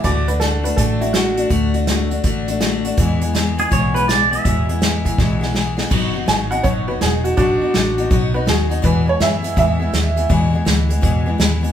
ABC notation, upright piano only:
X:1
M:4/4
L:1/8
Q:"Swing" 1/4=164
K:Emix
V:1 name="Upright piano"
d B A B A E F2 | z8 | z8 | z8 |
z2 g f c B G F | [DF]4 z B G2 | B c e2 e4 | z8 |]